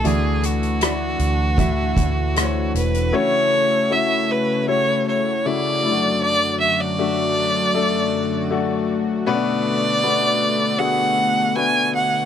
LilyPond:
<<
  \new Staff \with { instrumentName = "Violin" } { \time 4/4 \key d \lydian \tempo 4 = 78 gis'8 fis'2. b'8 | cis''4 e''8 b'8 cis''8 cis''8 d''4 | d''8 e''16 d''2~ d''8. r8 | d''2 fis''4 gis''8 fis''8 | }
  \new Staff \with { instrumentName = "Grand piano" } { \time 4/4 \key d \lydian <a e' fis' d''>4 <a e' fis' d''>4 <a e' fis' e''>4 <a e' fis' bis' cis''>4 | <a cis' e' fis' cis''>4 <a cis' e' fis' e''>4 <a cis' e' fis' cis''>4 <cis a e' fis' e''>8 <a d' e' fis'>8~ | <a d' e' fis'>4 <a d' fis'>4 <a d' a'>4 <a d' fis'>4 | <a b cis' d' fis' b'>4 <a b d' fis' b'>4 <a b d' fis' gis'>4 <a b d' fis' b'>4 | }
  \new Staff \with { instrumentName = "Grand piano" } { \clef bass \time 4/4 \key d \lydian d4. r2 r8 | r1 | r1 | b,4. r2 r8 | }
  \new Staff \with { instrumentName = "Analog synth pad" } { \time 4/4 \key d \lydian << { fis'1 | fis'1~ | fis'1~ | fis'1 | } \\ { <e a d'>1 | <cis a e'>2.~ <cis a e'>8 <fis, d fis a>8~ | <fis, d fis a>1 | <d a b>1 | } >> }
  \new Staff \with { instrumentName = "Steel-string acoustic guitar" } { \time 4/4 \key d \lydian <d e a e' fis'>2 <d e a e' fis'>2 | r1 | r1 | r1 | }
  \new Staff \with { instrumentName = "Fingered electric bass" } { \clef bass \time 4/4 \key d \lydian d,4. d,4 d,4 e,,8 | r1 | r1 | r1 | }
  \new DrumStaff \with { instrumentName = "Drums" } \drummode { \time 4/4 hh8 hh16 hh16 <hh ss>8 hh8 <hh bd>8 <hh bd>8 <hh ss>8 hh16 hh16 | r4 r4 r4 r4 | r4 r4 r4 r4 | r4 r4 r4 r4 | }
>>